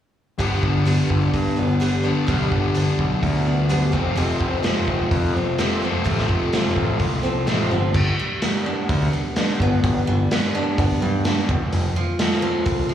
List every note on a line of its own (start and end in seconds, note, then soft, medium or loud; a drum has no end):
0.39 0.57 G1 medium
0.39 1.80 G2 medium
0.39 0.84 D3 medium
0.39 0.86 G3 medium
0.39 0.87 B3 medium
0.39 0.88 D4 medium
0.39 kick medium
0.39 open hi-hat soft
0.63 0.99 G1 medium
0.63 kick medium
0.85 1.80 D3 medium
0.85 1.57 G3 medium
0.85 1.56 B3 medium
0.85 1.55 D4 medium
0.85 open hi-hat soft
1.10 1.28 G1 medium
1.10 kick medium
1.34 1.59 G2 medium
1.34 kick medium
1.34 open hi-hat soft
1.56 2.11 G1 medium
1.56 1.80 G3 soft
1.56 1.81 B3 medium
1.56 1.82 D4 medium
1.80 2.26 G2 medium
1.80 2.26 D3 medium
1.80 2.05 G3 medium
1.80 2.03 B3 loud
1.80 2.02 D4 loud
1.80 open hi-hat soft
2.03 2.27 D3 medium
2.03 2.27 G3 medium
2.03 2.28 B3 medium
2.03 2.28 D4 medium
2.08 2.26 G2 medium
2.27 2.46 B1 medium
2.27 2.99 G2 medium
2.27 2.73 D3 medium
2.27 2.74 G3 medium
2.27 2.75 B3 medium
2.27 2.75 D4 medium
2.27 kick medium
2.27 open hi-hat soft
2.52 2.88 G1 medium
2.52 kick medium
2.74 3.69 D3 medium
2.74 3.47 G3 medium
2.74 3.45 B3 medium
2.74 3.44 D4 medium
2.74 open hi-hat soft
2.99 3.17 B1 medium
2.99 kick medium
3.23 3.95 D2 medium
3.23 kick medium
3.23 open hi-hat soft
3.45 3.69 G3 soft
3.45 3.70 B3 medium
3.45 3.70 D4 medium
3.69 3.92 G2 medium
3.69 3.93 D3 medium
3.69 3.93 G3 medium
3.69 3.92 B3 medium
3.69 3.92 D4 medium
3.69 open hi-hat soft
3.92 4.12 F1 medium
3.92 4.15 F2 medium
3.92 4.15 C3 medium
3.92 4.17 F3 medium
3.92 4.17 A3 medium
3.92 4.18 C4 medium
3.92 kick medium
3.97 5.59 C4 medium
4.16 4.35 F1 medium
4.16 5.58 F2 medium
4.16 4.62 C3 medium
4.16 4.64 F3 medium
4.16 4.65 A3 medium
4.16 4.66 C4 medium
4.16 open hi-hat soft
4.41 4.77 F1 medium
4.41 kick medium
4.63 5.57 C3 medium
4.63 5.36 F3 medium
4.63 5.35 A3 medium
4.63 5.33 C4 medium
4.63 snare loud
4.63 open hi-hat soft
4.88 5.06 F1 medium
4.88 kick medium
5.11 5.37 F2 medium
5.11 kick medium
5.11 open hi-hat medium
5.34 5.89 F1 medium
5.34 5.58 F3 medium
5.34 5.59 A3 medium
5.34 5.59 C4 medium
5.58 6.03 F2 medium
5.58 6.03 C3 medium
5.58 5.84 F3 medium
5.58 5.83 A3 loud
5.58 5.81 C4 medium
5.58 snare medium
5.58 open hi-hat soft
5.81 7.46 F2 medium
5.81 7.47 C3 medium
5.81 6.05 A3 medium
5.81 6.05 C4 medium
5.85 6.04 F3 medium
6.04 6.24 A1 medium
6.04 6.76 F2 medium
6.04 6.51 C3 medium
6.04 6.52 F3 medium
6.04 6.53 A3 medium
6.04 6.54 C4 medium
6.04 kick medium
6.04 open hi-hat soft
6.18 snare soft
6.29 6.65 F1 medium
6.29 kick medium
6.53 7.47 C3 medium
6.53 7.25 F3 medium
6.53 7.24 A3 medium
6.53 7.22 C4 medium
6.53 snare loud
6.53 open hi-hat soft
6.76 6.95 A1 medium
6.76 kick medium
6.99 7.47 C2 medium
6.99 kick medium
6.99 open hi-hat soft
7.23 7.47 F3 soft
7.23 7.48 A3 medium
7.23 7.48 C4 medium
7.47 7.69 A1 medium
7.47 7.94 F2 medium
7.47 7.94 C3 medium
7.47 7.72 F3 medium
7.47 7.71 A3 loud
7.47 7.70 C4 medium
7.47 snare medium
7.47 open hi-hat soft
7.71 7.93 G1 medium
7.71 7.95 F3 soft
7.71 7.95 A3 medium
7.71 7.94 C4 medium
7.94 8.13 G1 loud
7.94 9.13 G2 medium
7.94 kick loud
7.94 crash medium
8.20 9.12 G3 medium
8.42 8.88 B3 medium
8.42 snare loud
8.42 open hi-hat medium
8.66 9.36 D4 medium
8.89 9.07 D2 medium
8.89 9.60 B3 medium
8.89 kick loud
8.89 open hi-hat medium
9.13 10.06 G3 medium
9.36 10.54 D4 medium
9.36 snare loud
9.36 open hi-hat soft
9.60 9.78 G1 medium
9.60 10.31 B3 medium
9.60 kick medium
9.84 10.02 G1 loud
9.84 11.02 G2 medium
9.84 kick medium
9.84 open hi-hat soft
10.07 10.26 G1 medium
10.07 11.01 G3 medium
10.31 10.78 B3 medium
10.31 snare loud
10.31 open hi-hat medium
10.55 11.24 D4 medium
10.78 10.87 G1 medium
10.78 11.50 B3 medium
10.78 kick loud
10.78 open hi-hat soft
11.02 11.38 G2 medium
11.02 11.49 G3 medium
11.25 11.49 D4 medium
11.25 snare loud
11.25 open hi-hat soft
11.49 11.58 F1 medium
11.49 11.73 F2 medium
11.49 kick loud
11.72 11.91 F1 medium
11.72 12.91 F2 medium
11.72 open hi-hat soft
11.96 12.88 F3 medium
12.19 12.64 A3 medium
12.19 snare loud
12.19 open hi-hat soft
12.31 snare soft
12.42 12.94 C4 medium
12.66 12.84 C2 medium
12.66 12.94 A3 medium
12.66 kick loud
12.66 open hi-hat medium
12.89 12.94 F3 medium